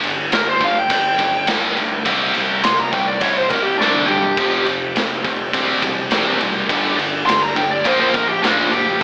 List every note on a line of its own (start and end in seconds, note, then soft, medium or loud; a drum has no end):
0.03 0.28 G1 medium
0.03 0.29 G2 medium
0.03 0.29 D3 medium
0.03 ride medium
0.32 0.57 G1 medium
0.32 0.58 G2 medium
0.32 0.58 D3 medium
0.32 0.48 A#4 medium
0.32 snare loud
0.32 ride loud
0.48 0.62 C5 medium
0.60 0.85 G1 medium
0.60 0.87 G2 medium
0.60 0.87 D3 medium
0.60 0.77 F5 medium
0.60 kick medium
0.60 ride medium
0.79 0.91 G5 medium
0.90 1.15 G1 medium
0.90 1.16 G2 medium
0.90 1.16 D3 medium
0.90 1.47 G5 medium
0.90 kick medium
0.90 ride loud
1.18 1.44 G1 medium
1.18 1.45 G2 medium
1.18 1.45 D3 medium
1.18 kick medium
1.18 ride medium
1.47 1.72 G1 medium
1.47 1.75 G2 medium
1.47 1.75 D3 medium
1.47 1.75 G3 medium
1.47 snare loud
1.47 ride loud
1.77 2.01 D2 medium
1.77 2.03 G2 medium
1.77 2.04 D3 medium
1.77 ride medium
2.05 2.30 C2 medium
2.05 2.33 C3 medium
2.05 2.33 G3 loud
2.05 2.33 C4 loud
2.05 kick loud
2.05 ride loud
2.34 2.60 C2 medium
2.34 2.61 C3 medium
2.34 2.62 G3 medium
2.34 ride medium
2.63 2.89 C2 medium
2.63 2.90 C3 medium
2.63 2.90 G3 medium
2.63 2.78 C6 medium
2.63 snare loud
2.63 ride loud
2.80 2.93 A#5 medium
2.92 3.17 C2 medium
2.92 3.20 C3 medium
2.92 3.20 G3 medium
2.92 3.06 G5 medium
2.92 kick medium
2.92 ride medium
3.08 3.21 D5 loud
3.21 3.46 C2 loud
3.21 3.49 C3 medium
3.21 3.49 G3 medium
3.21 3.36 C#5 medium
3.21 kick loud
3.21 ride loud
3.37 3.49 C5 medium
3.49 3.75 C2 medium
3.49 3.78 C3 medium
3.49 3.78 G3 medium
3.49 3.63 A#4 medium
3.49 kick medium
3.49 ride medium
3.63 3.78 G4 medium
3.77 4.04 C2 medium
3.77 4.07 D4 medium
3.77 snare medium
3.81 4.08 C3 medium
3.81 4.08 G3 medium
3.81 4.08 C4 medium
3.94 high tom medium
4.06 4.33 G2 medium
4.06 4.64 G4 loud
4.06 mid tom medium
4.10 4.36 C3 medium
4.10 4.36 G3 medium
4.23 floor tom medium
4.36 4.62 F1 medium
4.36 4.66 F2 medium
4.36 4.66 C3 medium
4.36 5.52 F3 medium
4.36 4.66 F3 loud
4.36 6.67 C4 medium
4.36 6.67 G4 medium
4.36 kick loud
4.36 crash medium
4.66 4.91 F1 medium
4.66 4.94 F2 medium
4.66 4.94 C3 medium
4.66 ride medium
4.95 5.20 F1 medium
4.95 5.22 F2 medium
4.95 5.23 C3 medium
4.95 snare loud
4.95 ride loud
5.24 5.49 F1 medium
5.24 5.51 F2 medium
5.24 5.51 C3 medium
5.24 kick medium
5.24 ride medium
5.53 5.78 E1 medium
5.53 5.82 C3 medium
5.53 5.82 G3 medium
5.53 5.82 C4 medium
5.53 6.68 D5 medium
5.53 kick loud
5.53 ride loud
5.82 6.07 E1 medium
5.82 6.09 C3 medium
5.82 6.09 G3 medium
5.82 kick medium
5.82 ride medium
6.11 6.36 E1 medium
6.11 6.39 C3 medium
6.11 6.39 G3 medium
6.11 6.39 C4 medium
6.11 snare loud
6.11 ride loud
6.40 6.65 E1 medium
6.40 6.67 C3 medium
6.40 6.67 G3 medium
6.40 ride medium
6.68 6.94 G1 medium
6.68 6.96 G2 medium
6.68 6.97 D3 loud
6.68 7.84 G3 medium
6.68 6.97 G3 loud
6.68 7.84 D4 medium
6.68 7.84 A4 medium
6.68 kick loud
6.68 ride loud
6.97 7.22 G1 medium
6.97 7.24 G2 medium
6.97 7.24 D3 medium
6.97 ride medium
7.26 7.52 G1 medium
7.26 7.53 G2 medium
7.26 7.54 D3 medium
7.26 7.41 C6 medium
7.26 snare loud
7.26 ride loud
7.42 7.56 A#5 medium
7.56 7.81 G1 medium
7.56 7.83 G2 medium
7.56 7.83 D3 medium
7.56 7.70 G5 medium
7.56 kick medium
7.56 ride medium
7.71 7.87 D5 loud
7.84 8.10 A#1 medium
7.84 8.12 A#2 medium
7.84 8.12 F3 medium
7.84 9.00 A#3 medium
7.84 8.13 A#3 medium
7.84 9.00 F4 medium
7.84 9.00 C5 medium
7.84 7.99 C5 medium
7.84 kick medium
7.84 ride medium
8.00 8.14 C5 loud
8.14 8.39 A#1 medium
8.14 8.41 A#2 medium
8.14 8.41 F3 medium
8.14 8.28 A#4 medium
8.14 kick medium
8.14 ride medium
8.29 8.43 G4 loud
8.42 8.68 A#1 medium
8.42 8.71 A#2 medium
8.42 8.71 F3 medium
8.42 8.71 A#3 medium
8.42 8.71 D4 medium
8.42 snare loud
8.42 ride medium
8.71 8.96 F#1 medium
8.71 8.99 A#2 medium
8.71 8.99 F3 medium
8.71 9.03 G4 loud
8.71 ride medium
9.00 9.03 G2 medium